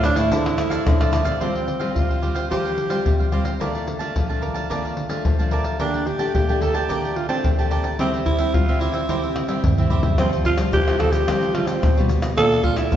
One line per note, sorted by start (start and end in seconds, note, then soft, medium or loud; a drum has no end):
0.00 0.12 A2 medium
0.00 0.29 A2 medium
0.00 0.27 F3 medium
0.00 0.27 A3 medium
0.00 0.16 E4 medium
0.00 0.16 A4 medium
0.00 pandeiro medium
0.00 tamborim medium
0.00 shaker medium
0.04 0.19 D4 medium
0.04 0.27 E4 medium
0.04 0.15 D5 medium
0.04 0.14 F5 medium
0.15 0.29 A2 medium
0.15 1.13 E4 medium
0.15 0.30 A4 medium
0.15 0.30 D5 medium
0.15 0.29 F5 medium
0.15 pandeiro medium
0.15 shaker medium
0.15 surdo soft
0.31 0.55 D3 medium
0.31 0.84 D3 medium
0.31 0.55 F3 medium
0.31 0.55 A3 medium
0.31 0.57 E4 soft
0.31 0.55 E4 medium
0.31 0.57 A4 medium
0.31 0.57 D5 medium
0.31 0.58 F5 medium
0.31 pandeiro medium
0.31 shaker medium
0.31 surdo medium
0.46 pandeiro soft
0.46 tamborim medium
0.46 shaker soft
0.58 0.82 F3 medium
0.58 0.82 A3 medium
0.58 0.82 E4 medium
0.58 muted cavaquinho stroke soft
0.58 pandeiro medium
0.58 tamborim medium
0.58 shaker medium
0.70 0.99 A4 medium
0.70 0.98 D5 medium
0.70 0.98 F5 medium
0.70 pandeiro medium
0.70 shaker medium
0.70 surdo soft
0.86 1.39 A2 medium
0.86 1.21 D3 medium
0.86 1.09 F3 medium
0.86 1.10 A3 medium
0.86 1.10 E4 medium
0.86 pandeiro medium
0.86 tamborim medium
0.86 shaker medium
0.86 surdo loud
1.00 1.12 A4 medium
1.00 1.12 D5 medium
1.00 1.13 F5 medium
1.00 pandeiro soft
1.00 tamborim medium
1.00 shaker soft
1.12 1.36 F3 medium
1.12 1.37 A3 medium
1.12 1.25 E4 medium
1.12 1.37 E4 medium
1.12 1.26 A4 medium
1.12 1.24 D5 medium
1.12 1.23 F5 medium
1.12 pandeiro medium
1.12 tamborim medium
1.12 shaker medium
1.25 1.38 C3 medium
1.25 1.40 A4 medium
1.25 1.39 D5 medium
1.25 1.39 F5 medium
1.25 pandeiro medium
1.25 shaker medium
1.25 surdo soft
1.40 1.93 F3 medium
1.40 1.67 G3 medium
1.40 1.97 C4 medium
1.40 1.67 C4 medium
1.40 1.53 F4 medium
1.40 1.67 F4 medium
1.40 1.54 G4 medium
1.40 1.54 C5 medium
1.40 1.53 F5 medium
1.40 pandeiro medium
1.40 surdo soft
1.55 1.66 G4 soft
1.55 1.67 C5 soft
1.55 1.67 F5 soft
1.55 pandeiro soft
1.67 muted cavaquinho stroke soft
1.67 pandeiro soft
1.80 2.18 G3 medium
1.80 2.18 C4 medium
1.80 2.18 F4 medium
1.80 2.08 G4 medium
1.80 2.08 C5 medium
1.80 2.07 F5 medium
1.80 pandeiro medium
1.96 2.48 C3 medium
1.96 2.50 F4 medium
1.96 pandeiro medium
1.96 surdo medium
2.09 2.21 G4 soft
2.09 2.22 C5 soft
2.09 2.22 F5 soft
2.09 pandeiro soft
2.22 2.39 G3 medium
2.22 2.39 C4 soft
2.22 2.35 F4 soft
2.22 2.40 F4 medium
2.22 2.35 G4 soft
2.22 2.34 C5 soft
2.22 2.33 F5 soft
2.22 pandeiro soft
2.35 2.49 G4 medium
2.35 2.49 C5 medium
2.35 2.48 F5 medium
2.35 pandeiro medium
2.50 3.03 F3 medium
2.50 2.77 G3 soft
2.50 2.77 C4 soft
2.50 2.63 F4 medium
2.50 2.77 F4 medium
2.50 2.63 G4 medium
2.50 3.29 G4 medium
2.50 2.64 C5 medium
2.50 2.63 F5 medium
2.50 pandeiro medium
2.50 surdo soft
2.64 2.90 G4 soft
2.64 2.90 C5 soft
2.64 2.88 F5 soft
2.64 pandeiro soft
2.78 pandeiro medium
2.90 3.28 G3 medium
2.90 3.28 C4 soft
2.90 3.28 F4 medium
2.90 3.04 G4 soft
2.90 3.04 C5 medium
2.90 3.03 F5 medium
2.90 pandeiro medium
3.05 3.58 C3 medium
3.05 muted cavaquinho stroke soft
3.05 pandeiro medium
3.05 surdo medium
3.19 3.31 G4 soft
3.19 3.32 C5 soft
3.19 3.32 F5 soft
3.19 pandeiro soft
3.32 3.49 G3 soft
3.32 3.49 C4 soft
3.32 3.45 F4 medium
3.32 3.49 F4 medium
3.32 3.45 G4 medium
3.32 3.45 C5 medium
3.32 3.44 F5 medium
3.32 pandeiro medium
3.45 3.59 G4 soft
3.45 3.59 C5 soft
3.45 3.58 F5 soft
3.45 pandeiro medium
3.60 4.12 A#2 medium
3.60 3.97 A3 medium
3.60 3.97 D4 soft
3.60 3.98 F4 medium
3.60 3.73 A#4 medium
3.60 3.73 D5 medium
3.60 3.74 F5 medium
3.60 3.73 A5 medium
3.60 pandeiro medium
3.60 surdo soft
3.75 3.86 D5 soft
3.75 3.86 F5 soft
3.75 3.86 A5 soft
3.75 pandeiro soft
3.87 muted cavaquinho stroke soft
3.87 pandeiro medium
3.99 4.24 A3 medium
3.99 4.24 D4 medium
3.99 4.24 F4 medium
3.99 4.28 D5 medium
3.99 4.27 F5 medium
3.99 4.27 A5 medium
3.99 pandeiro medium
4.16 4.68 F3 medium
4.16 pandeiro medium
4.16 surdo medium
4.29 4.66 A3 medium
4.29 4.66 D4 medium
4.29 4.66 F4 medium
4.29 4.41 D5 soft
4.29 4.42 F5 soft
4.29 4.42 A5 soft
4.29 pandeiro soft
4.41 4.55 A#4 soft
4.41 4.55 D5 soft
4.41 4.54 F5 soft
4.41 4.53 A5 soft
4.41 pandeiro soft
4.54 4.69 D5 medium
4.54 4.69 F5 medium
4.54 4.68 A5 medium
4.54 pandeiro medium
4.70 5.22 A#2 medium
4.70 5.07 A3 soft
4.70 5.07 D4 soft
4.70 5.07 F4 medium
4.70 4.83 A#4 medium
4.70 4.83 D5 medium
4.70 4.83 F5 medium
4.70 4.83 A5 medium
4.70 pandeiro medium
4.70 surdo medium
4.84 5.10 D5 soft
4.84 5.09 F5 soft
4.84 5.08 A5 soft
4.84 pandeiro soft
4.97 pandeiro medium
5.09 5.34 A3 medium
5.09 5.34 D4 medium
5.09 5.34 F4 medium
5.09 5.24 D5 soft
5.09 5.23 F5 soft
5.09 5.23 A5 medium
5.09 pandeiro medium
5.25 5.77 F3 medium
5.25 muted cavaquinho stroke soft
5.25 pandeiro medium
5.25 surdo medium
5.39 5.76 A3 medium
5.39 5.76 D4 medium
5.39 5.76 F4 medium
5.39 5.51 D5 soft
5.39 5.52 F5 soft
5.39 5.51 A5 soft
5.39 pandeiro soft
5.51 5.65 A#4 medium
5.51 5.65 D5 medium
5.51 5.64 F5 medium
5.51 5.63 A5 medium
5.51 pandeiro medium
5.64 5.79 D5 soft
5.64 5.78 F5 soft
5.64 5.78 A5 soft
5.64 pandeiro medium
5.79 6.32 A#2 medium
5.79 6.06 A3 soft
5.79 6.08 D4 medium
5.79 6.06 D4 medium
5.79 6.06 G4 medium
5.79 5.92 A#4 medium
5.79 5.93 D5 medium
5.79 5.93 G5 medium
5.79 5.93 A5 medium
5.79 pandeiro medium
5.79 surdo medium
5.94 6.05 D5 soft
5.94 6.06 G5 soft
5.94 6.06 A5 soft
5.94 pandeiro soft
6.06 6.35 G4 medium
6.06 muted cavaquinho stroke soft
6.06 pandeiro soft
6.19 6.43 A3 medium
6.19 6.43 D4 medium
6.19 6.44 G4 medium
6.19 6.47 D5 soft
6.19 6.47 G5 medium
6.19 6.46 A5 medium
6.19 pandeiro medium
6.35 6.87 A#2 medium
6.35 6.63 G4 medium
6.35 pandeiro medium
6.35 surdo medium
6.49 6.85 A3 medium
6.49 6.86 D4 medium
6.49 6.86 G4 medium
6.49 6.61 D5 soft
6.49 6.61 G5 soft
6.49 6.61 A5 soft
6.49 pandeiro soft
6.61 6.76 A4 medium
6.61 6.74 A#4 soft
6.61 6.75 D5 soft
6.61 6.74 G5 soft
6.61 6.73 A5 soft
6.61 pandeiro medium
6.74 7.18 G4 medium
6.74 6.88 D5 medium
6.74 6.88 G5 medium
6.74 6.88 A5 medium
6.74 pandeiro medium
6.89 7.42 A#2 medium
6.89 7.15 A3 soft
6.89 7.15 D4 soft
6.89 7.16 G4 medium
6.89 7.02 A#4 medium
6.89 7.02 D5 medium
6.89 7.02 G5 medium
6.89 7.02 A5 medium
6.89 pandeiro medium
6.89 surdo medium
7.04 7.29 D5 soft
7.04 7.29 G5 soft
7.04 7.28 A5 soft
7.04 pandeiro soft
7.16 7.29 F4 medium
7.16 pandeiro medium
7.29 7.53 A3 medium
7.29 7.68 C4 medium
7.29 7.53 D4 medium
7.29 7.53 G4 medium
7.29 7.43 D5 soft
7.29 7.43 G5 soft
7.29 7.42 A5 medium
7.29 pandeiro medium
7.44 7.96 A#2 medium
7.44 muted cavaquinho stroke soft
7.44 pandeiro medium
7.44 surdo medium
7.58 7.95 A3 medium
7.58 7.95 D4 medium
7.58 7.96 G4 medium
7.58 7.70 D5 soft
7.58 7.71 G5 soft
7.58 7.71 A5 soft
7.58 pandeiro soft
7.70 7.84 A#4 medium
7.70 7.84 D5 medium
7.70 7.83 G5 medium
7.70 7.82 A5 medium
7.70 pandeiro medium
7.84 7.98 D5 soft
7.84 7.98 G5 soft
7.84 7.97 A5 soft
7.84 pandeiro medium
7.99 8.51 C3 medium
7.99 8.36 G3 medium
7.99 8.36 C4 medium
7.99 8.12 C4 medium
7.99 8.12 E4 medium
7.99 8.36 E4 medium
7.99 8.12 G4 medium
7.99 8.12 C5 medium
7.99 8.12 E5 medium
7.99 pandeiro medium
7.99 surdo soft
8.14 8.25 G4 soft
8.14 8.26 C5 soft
8.14 8.26 E5 soft
8.14 pandeiro soft
8.26 8.55 E4 medium
8.26 muted cavaquinho stroke soft
8.26 pandeiro medium
8.26 surdo medium
8.39 8.54 G3 medium
8.39 8.63 C4 medium
8.39 8.63 E4 medium
8.39 8.67 G4 soft
8.39 8.66 C5 medium
8.39 8.66 E5 medium
8.39 pandeiro medium
8.54 8.67 G3 medium
8.54 8.82 F4 medium
8.54 pandeiro medium
8.54 surdo medium
8.68 9.05 G3 medium
8.68 9.05 C4 medium
8.68 9.05 E4 medium
8.68 8.80 G4 soft
8.68 8.81 C5 soft
8.68 8.81 E5 soft
8.68 pandeiro soft
8.80 9.63 E4 medium
8.80 8.94 E4 soft
8.80 8.94 G4 soft
8.80 8.93 C5 soft
8.80 8.92 E5 soft
8.80 pandeiro medium
8.93 9.08 G4 medium
8.93 9.08 C5 medium
8.93 9.07 E5 medium
8.93 pandeiro medium
9.09 9.61 C3 medium
9.09 9.46 G3 soft
9.09 9.46 C4 medium
9.09 9.21 E4 medium
9.09 9.46 E4 medium
9.09 9.22 G4 medium
9.09 9.22 C5 medium
9.09 9.22 E5 medium
9.09 pandeiro medium
9.09 surdo medium
9.23 9.49 G4 soft
9.23 9.48 C5 soft
9.23 9.47 E5 soft
9.23 pandeiro soft
9.36 pandeiro medium
9.36 tamborim medium
9.48 9.63 G3 medium
9.48 9.72 C4 medium
9.48 9.72 E4 medium
9.48 9.63 G4 soft
9.48 9.62 C5 medium
9.48 9.62 E5 medium
9.48 pandeiro medium
9.64 9.77 G3 medium
9.64 muted cavaquinho stroke soft
9.64 surdo medium
9.64 pandeiro medium
9.64 surdo medium
9.78 10.14 G3 medium
9.78 10.15 C4 medium
9.78 10.15 E4 medium
9.78 9.89 G4 soft
9.78 9.90 C5 soft
9.78 9.90 E5 soft
9.78 surdo medium
9.78 pandeiro soft
9.90 10.03 E4 medium
9.90 10.03 G4 medium
9.90 10.02 C5 medium
9.90 10.01 E5 medium
9.90 pandeiro medium
9.90 surdo medium
10.02 10.17 G4 soft
10.02 10.17 C5 soft
10.02 10.16 E5 soft
10.02 pandeiro medium
10.02 surdo medium
10.18 10.70 F3 medium
10.18 10.65 F3 medium
10.18 10.55 G3 medium
10.18 10.55 C4 medium
10.18 10.31 C4 medium
10.18 10.55 F4 medium
10.18 pandeiro medium
10.18 tamborim medium
10.18 shaker medium
10.18 surdo medium
10.33 pandeiro soft
10.33 shaker soft
10.45 10.58 F4 medium
10.45 pandeiro medium
10.45 surdo medium
10.57 10.81 G3 medium
10.57 10.81 C4 medium
10.57 10.82 F4 medium
10.57 pandeiro medium
10.57 tamborim medium
10.57 shaker medium
10.73 11.25 C3 soft
10.73 10.96 F3 medium
10.73 11.01 G4 loud
10.73 pandeiro medium
10.73 shaker medium
10.73 surdo medium
10.87 11.24 G3 medium
10.87 11.24 C4 medium
10.87 11.24 F4 medium
10.87 pandeiro soft
10.87 tamborim medium
10.87 shaker soft
10.99 11.23 F3 medium
10.99 11.14 A4 medium
10.99 pandeiro medium
10.99 tamborim medium
11.12 11.56 G4 medium
11.12 pandeiro medium
11.12 shaker medium
11.27 11.80 F3 medium
11.27 11.74 F3 medium
11.27 11.44 G3 medium
11.27 11.44 C4 medium
11.27 11.44 F4 medium
11.27 pandeiro medium
11.27 tamborim medium
11.27 shaker medium
11.27 surdo medium
11.42 pandeiro soft
11.42 shaker soft
11.54 11.91 G3 medium
11.54 11.91 C4 medium
11.54 11.68 F4 medium
11.54 11.92 F4 medium
11.54 pandeiro medium
11.54 tamborim medium
11.67 12.09 C4 medium
11.67 pandeiro medium
11.67 shaker medium
11.82 11.94 F3 medium
11.82 pandeiro medium
11.82 tamborim medium
11.82 shaker medium
11.82 surdo loud
11.96 12.31 B2 medium
11.96 12.33 G3 medium
11.96 12.33 F4 medium
11.96 pandeiro soft
11.96 shaker soft
12.09 pandeiro medium
12.09 shaker medium
12.22 pandeiro medium
12.22 tamborim medium
12.22 shaker medium
12.37 12.89 A#2 medium
12.37 12.83 A#2 medium
12.37 12.53 A3 medium
12.37 12.53 D4 medium
12.37 12.54 F4 medium
12.37 12.66 A4 loud
12.37 pandeiro medium
12.37 tamborim medium
12.37 shaker medium
12.37 surdo medium
12.52 pandeiro soft
12.52 shaker soft
12.63 12.72 A3 medium
12.63 12.72 D4 medium
12.63 12.72 F4 medium
12.63 12.79 F4 medium
12.63 pandeiro medium
12.63 surdo medium
12.76 12.96 A3 medium
12.76 12.96 D4 medium
12.76 12.96 E4 medium
12.76 12.96 F4 medium
12.76 pandeiro medium
12.76 tamborim medium
12.76 shaker medium
12.91 12.96 A#2 medium
12.91 12.96 F3 medium
12.91 pandeiro medium
12.91 shaker medium
12.91 surdo medium